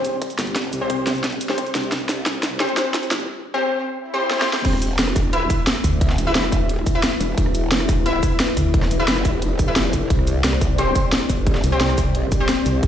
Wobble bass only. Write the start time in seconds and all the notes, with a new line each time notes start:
0.39 G1
0.73 C2
0.90 C2
1.75 C2
1.92 C2
2.26 C2
3.11 G1
4.65 E1
4.99 E1
5.84 D2
6.18 E1
6.35 E1
7.20 E1
7.38 E1
7.72 E1
8.57 D2
8.91 E1
9.08 F1
10.10 C2
10.44 C2
11.30 G1
11.64 C2
11.81 C2
12.66 C2
12.83 C2